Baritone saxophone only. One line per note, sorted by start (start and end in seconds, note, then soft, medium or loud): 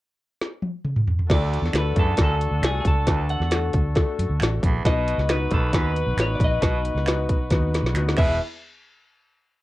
1.29 1.60 D2 medium
1.96 2.14 E2 medium
2.19 2.36 F#2 medium
3.08 3.25 D2 medium
4.62 4.80 E2 medium
4.85 5.16 B2 medium
5.51 5.69 D#2 medium
5.74 5.91 F#2 medium
6.61 6.80 B2 medium
8.18 8.39 B2 medium